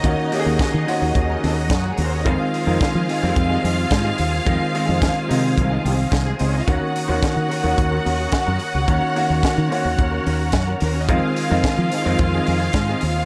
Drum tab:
HH |xoxoxoxo|xoxoxoxo|xoxoxoxo|xoxoxoxo|
SD |--o---o-|--o---o-|--o---o-|--o---o-|
BD |o-o-o-o-|o-o-o-o-|o-o-o-o-|o-o-o-o-|

HH |xoxoxoxo|xoxoxoxo|
SD |--o---o-|--o---o-|
BD |o-o-o-o-|o-o-o-o-|